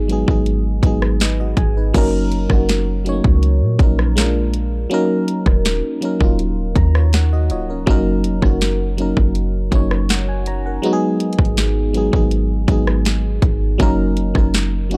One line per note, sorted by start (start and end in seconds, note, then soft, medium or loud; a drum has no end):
0.00 0.25 G#1 loud
0.00 0.08 F#3 loud
0.00 0.09 G#3 loud
0.00 0.10 B3 loud
0.00 0.11 D#4 loud
0.00 0.12 G#4 loud
0.08 0.24 F#3 medium
0.08 0.24 G#3 medium
0.08 0.25 B3 medium
0.08 0.25 D#4 medium
0.08 closed hi-hat medium
0.12 0.26 G#4 loud
0.27 0.81 G#1 loud
0.27 0.72 F#3 medium
0.27 0.73 G#3 medium
0.27 0.73 B3 medium
0.27 0.74 D#4 medium
0.27 kick loud
0.31 0.74 G#4 medium
0.46 closed hi-hat medium
0.82 1.54 G#1 loud
0.82 1.72 F#3 medium
0.82 1.73 G#3 medium
0.82 1.74 B3 medium
0.82 1.21 D#4 medium
0.82 kick medium
0.82 closed hi-hat medium
0.86 1.22 G#4 medium
1.02 cross-stick loud
1.20 1.39 D#4 medium
1.20 1.39 B4 medium
1.20 1.39 D#5 medium
1.20 snare loud
1.20 closed hi-hat medium
1.40 1.75 F#4 medium
1.40 1.75 D#5 medium
1.57 1.93 G#1 loud
1.57 1.92 G#5 medium
1.57 kick loud
1.57 closed hi-hat medium
1.77 1.96 D#4 medium
1.77 2.12 B4 medium
1.94 2.48 F#1 loud
1.94 2.39 F#3 loud
1.94 2.39 A#3 loud
1.94 2.40 C#4 loud
1.94 2.40 D#4 loud
1.94 kick loud
1.94 closed hi-hat medium
1.94 crash loud
1.98 2.41 A#4 loud
2.32 closed hi-hat medium
2.49 3.21 F#1 loud
2.49 2.94 F#3 medium
2.49 2.95 A#3 medium
2.49 2.95 C#4 medium
2.49 2.96 D#4 medium
2.49 kick loud
2.49 cross-stick medium
2.53 2.97 F#4 medium
2.69 snare loud
2.69 closed hi-hat medium
3.05 3.65 F#3 medium
3.05 3.12 A3 medium
3.05 3.66 C#4 medium
3.05 3.66 D#4 medium
3.05 closed hi-hat medium
3.09 3.69 A#3 medium
3.09 3.67 C#5 medium
3.24 3.63 C#2 loud
3.24 kick loud
3.43 closed hi-hat medium
3.61 3.79 A#2 loud
3.79 4.87 A#1 loud
3.79 4.16 F#3 medium
3.79 4.15 A#3 medium
3.79 4.17 C#4 medium
3.79 4.18 D#4 medium
3.79 kick medium
3.79 closed hi-hat medium
3.83 4.18 A#4 medium
3.99 cross-stick loud
4.16 4.76 G#3 loud
4.16 4.76 A#3 medium
4.16 4.24 C#4 medium
4.16 4.78 F4 medium
4.16 snare loud
4.16 closed hi-hat medium
4.20 4.78 A#4 loud
4.24 4.80 D4 medium
4.54 closed hi-hat medium
4.90 5.80 F#3 loud
4.90 5.80 A#3 loud
4.90 5.81 C#4 loud
4.90 5.81 D#4 loud
4.90 closed hi-hat medium
4.94 5.82 A#4 loud
5.28 closed hi-hat medium
5.46 5.82 D#1 loud
5.46 kick medium
5.46 cross-stick medium
5.65 snare loud
5.65 closed hi-hat medium
6.01 6.16 F#3 medium
6.01 6.17 A#3 medium
6.01 6.17 C#4 medium
6.01 6.18 D#4 medium
6.01 closed hi-hat medium
6.05 6.18 A#4 loud
6.19 6.74 D#1 loud
6.19 6.65 F#3 medium
6.19 6.65 A#3 medium
6.19 6.66 C#4 medium
6.19 6.66 D#4 medium
6.19 kick loud
6.24 6.67 F4 medium
6.39 closed hi-hat medium
6.75 7.52 D#2 loud
6.75 6.94 C#4 medium
6.75 6.94 A#4 medium
6.75 7.11 A#5 medium
6.75 kick medium
6.75 closed hi-hat medium
6.95 7.13 F4 medium
6.95 7.13 C#5 medium
6.95 cross-stick loud
7.13 7.32 A#4 medium
7.13 7.48 F#5 medium
7.13 snare loud
7.13 closed hi-hat medium
7.33 7.50 F#4 medium
7.33 7.50 D#5 medium
7.50 7.85 C#1 loud
7.50 7.69 F4 medium
7.50 7.68 C#5 medium
7.50 7.85 D#5 medium
7.50 closed hi-hat medium
7.70 7.87 C#4 medium
7.70 7.89 A#4 medium
7.86 8.26 F#1 loud
7.86 8.32 F#3 loud
7.86 8.32 A#3 loud
7.86 8.33 C#4 loud
7.86 8.33 D#4 loud
7.86 kick loud
7.86 closed hi-hat medium
7.90 8.34 A#4 loud
8.24 8.42 F1 loud
8.24 closed hi-hat medium
8.42 9.14 F#1 loud
8.42 8.87 F#3 medium
8.42 8.87 A#3 medium
8.42 8.88 C#4 medium
8.42 8.88 D#4 medium
8.42 kick medium
8.42 cross-stick medium
8.46 8.89 F#4 medium
8.61 snare loud
8.61 closed hi-hat medium
8.97 9.57 F#3 medium
8.97 9.58 A#3 medium
8.97 9.59 C#4 medium
8.97 9.59 D#4 medium
8.97 closed hi-hat medium
9.01 9.60 A#4 medium
9.17 9.70 F#1 loud
9.17 kick medium
9.35 closed hi-hat medium
9.71 10.79 F#1 loud
9.71 10.61 F#3 medium
9.71 10.62 A#3 medium
9.71 10.62 C#4 medium
9.71 10.63 D#4 medium
9.71 kick medium
9.71 closed hi-hat medium
9.75 10.11 C#5 loud
9.91 cross-stick loud
10.09 10.28 A#4 medium
10.09 10.27 F#5 medium
10.09 snare loud
10.09 closed hi-hat medium
10.29 10.46 G#5 medium
10.46 10.65 C#5 medium
10.46 10.64 A#5 medium
10.46 closed hi-hat medium
10.66 11.01 A#4 medium
10.66 11.01 F#5 medium
10.82 11.72 F#3 loud
10.82 11.73 G#3 loud
10.82 11.73 B3 loud
10.82 11.74 D#4 loud
10.82 closed hi-hat medium
10.86 10.91 F#4 loud
10.93 11.78 G#4 loud
11.20 closed hi-hat medium
11.33 closed hi-hat medium
11.39 12.10 G#1 loud
11.39 kick loud
11.45 closed hi-hat soft
11.57 snare loud
11.57 closed hi-hat medium
11.93 12.09 F#3 medium
11.93 12.09 G#3 medium
11.93 12.10 B3 medium
11.93 12.10 D#4 medium
11.93 closed hi-hat medium
11.97 12.11 G#4 medium
12.12 12.67 G#1 loud
12.12 12.57 F#3 medium
12.12 12.58 G#3 medium
12.12 12.58 B3 medium
12.12 12.59 D#4 medium
12.12 kick loud
12.16 12.59 G#4 medium
12.31 closed hi-hat medium
12.67 13.39 G#1 loud
12.67 13.58 F#3 medium
12.67 13.58 G#3 medium
12.67 13.59 B3 medium
12.67 13.59 D#4 medium
12.67 kick medium
12.67 closed hi-hat medium
12.72 13.60 G#4 medium
12.87 cross-stick loud
13.05 snare loud
13.05 closed hi-hat medium
13.42 13.78 G#1 loud
13.42 kick loud
13.42 closed hi-hat medium
13.78 14.33 F#1 loud
13.78 14.24 F#3 loud
13.78 14.24 A#3 loud
13.78 14.25 C#4 loud
13.78 14.25 D#4 loud
13.78 kick loud
13.78 closed hi-hat medium
13.82 14.26 A#4 loud
14.17 closed hi-hat medium
14.34 14.97 F#1 loud
14.34 14.79 F#3 medium
14.34 14.80 A#3 medium
14.34 14.80 C#4 medium
14.34 14.81 D#4 medium
14.34 kick loud
14.34 cross-stick medium
14.38 14.82 A#4 medium
14.54 snare loud
14.54 closed hi-hat medium
14.90 14.97 F#3 medium
14.90 14.97 A#3 medium
14.90 14.97 C#4 medium
14.90 14.97 D#4 medium
14.90 closed hi-hat medium
14.94 14.97 F#4 loud